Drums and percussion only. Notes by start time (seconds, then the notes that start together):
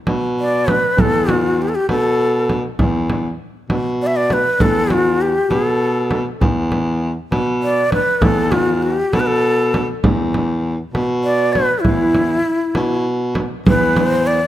0.07 frame drum
0.68 frame drum
0.98 frame drum
1.29 frame drum
1.89 frame drum
2.49 frame drum
2.79 frame drum
3.10 frame drum
3.70 frame drum
4.30 frame drum
4.60 frame drum
4.90 frame drum
5.51 frame drum
6.11 frame drum
6.41 frame drum
6.72 frame drum
7.32 frame drum
7.92 frame drum
8.22 frame drum
8.52 frame drum
9.13 frame drum
9.74 frame drum
10.04 frame drum
10.34 frame drum
10.95 frame drum
11.55 frame drum
11.85 frame drum
12.15 frame drum
12.75 frame drum
13.35 frame drum
13.66 frame drum
13.96 frame drum